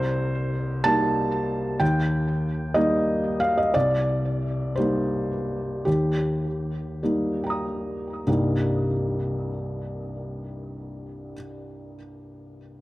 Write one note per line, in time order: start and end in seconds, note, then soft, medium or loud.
0.00 0.83 C2 medium
0.00 0.85 C5 medium
0.84 1.77 G3 soft
0.84 1.77 A#3 soft
0.84 1.77 D#4 soft
0.84 1.80 A5 loud
1.80 2.73 D#2 medium
1.80 2.76 G5 medium
2.74 3.70 G3 soft
2.74 3.70 A#3 soft
2.74 3.70 D#4 soft
2.74 3.41 D#5 medium
3.40 3.57 F5 medium
3.58 3.74 D#5 medium
3.74 4.74 C2 medium
3.74 4.76 D5 medium
4.76 5.83 G3 soft
4.76 5.84 A#3 soft
4.76 5.83 D#4 soft
4.76 5.86 C5 medium
5.85 7.00 D#2 soft
5.85 7.03 G4 medium
7.03 8.23 G3 soft
7.03 8.23 A#3 soft
7.03 8.24 D#4 soft
7.44 8.23 G5 soft
7.44 8.25 A#5 soft
7.50 8.26 D#6 soft
8.27 11.33 C2 soft
8.27 11.34 G2 soft
8.27 11.34 G3 soft
8.27 11.34 A#3 soft
8.27 11.34 C4 soft
8.27 11.35 D#4 soft